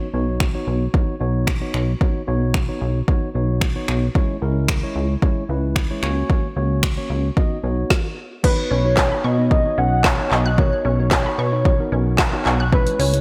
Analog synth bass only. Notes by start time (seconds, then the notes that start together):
0.14 B1
0.67 B1
1.21 B1
1.74 B1
2.28 B1
2.81 B1
3.35 B1
3.88 B1
4.42 C#2
4.96 C#2
5.49 C#2
6.03 C#2
6.56 C#2
7.10 C#2
7.64 B1
8.71 B1
9.24 B2
9.78 B1
10.31 B1
10.85 B1
11.38 B2
11.92 B1
12.46 B1
12.99 C#2